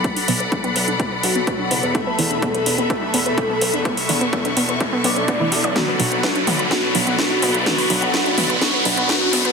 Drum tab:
HH |xoo-xxoxx-o-x-ox|x-oxxxoxx-oxx-ox|xooxxxoxx-oxx-ox|x-oxxxoxx-oxx-ox|
SD |----------------|----------------|----------------|o---o---o---o---|
T2 |----------------|----------------|----------------|o-----o---------|
BD |o---o---o---o---|o---o---o---o---|o---o---o---o---|o---o---o---o---|

HH |xooxxxoxx-oxx-ox|
SD |o---o---o---o---|
T2 |o-----o---------|
BD |o---o---o---o---|